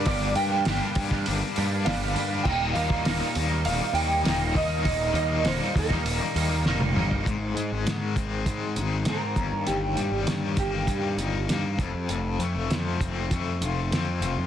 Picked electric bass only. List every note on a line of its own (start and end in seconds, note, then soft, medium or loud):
0.06 0.34 G1 medium
0.36 0.64 G2 loud
0.66 0.80 G1 medium
0.95 1.24 G2 medium
1.28 1.41 G1 medium
1.58 1.85 G2 loud
1.87 2.15 G1 medium
2.16 2.44 G2 medium
2.45 2.74 D#1 loud
2.75 3.04 D#2 loud
3.07 3.20 D#1 loud
3.36 3.64 D#2 medium
3.65 3.80 D#1 medium
3.93 4.22 D#2 medium
4.24 4.53 D#1 medium
4.55 4.83 D#2 medium
4.85 5.13 D#1 medium
5.14 5.43 D#2 loud
5.44 5.59 D#1 medium
5.75 6.04 D#2 medium
6.05 6.19 D#1 loud
6.36 6.64 D#2 medium
6.65 6.93 F1 medium
6.95 7.23 G1 loud
7.27 7.54 G#1 medium
7.55 7.70 G#2 loud
7.72 7.85 G#1 medium
7.85 8.14 G#2 medium
8.16 8.45 G#1 medium
8.46 8.78 G#2 medium
8.76 9.05 G#1 medium
9.06 9.35 G#2 medium
9.36 9.51 G1 loud
9.53 9.67 G2 medium
9.67 9.96 G1 medium
9.97 10.11 G2 medium
10.11 10.26 G1 medium
10.27 10.56 G2 medium
10.57 10.86 G1 medium
10.88 11.19 G2 medium
11.17 11.46 G1 medium
11.49 11.77 G2 medium
11.78 11.93 F1 medium
11.95 12.09 F2 medium
12.09 12.38 F1 medium
12.39 12.54 F2 medium
12.55 12.70 F1 medium
12.71 12.99 F2 medium
13.01 13.29 F1 medium
13.30 13.63 F2 medium
13.61 13.89 F1 medium
13.91 14.20 F2 medium
14.21 14.35 F1 loud
14.38 14.47 F2 medium